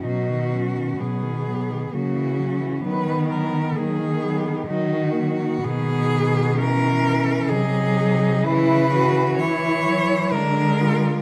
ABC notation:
X:1
M:3/4
L:1/16
Q:1/4=64
K:B
V:1 name="Cello"
F4 G4 F4 | B2 A2 G4 F4 | [K:G#m] G4 A4 G4 | B4 c4 A4 |]
V:2 name="Cello"
D2 C2 B,4 A,2 C2 | B,4 A,2 B,2 D2 A,2 | [K:G#m] B,4 C4 D4 | E2 F2 E4 =D2 ^E2 |]
V:3 name="Cello" clef=bass
F, D, F, D, F, D, F, D, F, E, F, E, | F, D, F, D, F, D, F, D, F, D, F, D, | [K:G#m] D,4 E,4 F,4 | E,4 E,2 F,2 G,4 |]
V:4 name="Cello" clef=bass
B,,4 B,,4 C,4 | D,4 D,4 D,4 | [K:G#m] B,,8 ^B,,4 | C,4 E,4 =D,4 |]